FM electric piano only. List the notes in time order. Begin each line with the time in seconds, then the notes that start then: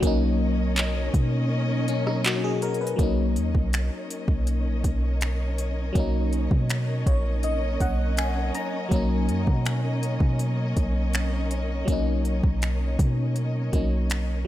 0.00 F#3 A#3
0.05 C#4 D#4
1.89 C#4
2.07 D#4
2.26 F#4
2.44 G#4
2.63 A#4
2.81 B4
2.96 F#3 A#3
3.01 C#4 D#4
5.93 F#3 A#3
5.97 C#4 D#4
7.07 C#5
7.44 D#5
7.81 F#5
8.18 G#5
8.55 A#5
8.89 F#3 A#3
8.93 C#4 D#4
11.85 F#3 A#3
11.90 C#4 D#4
13.72 F#3 A#3 C#4 D#4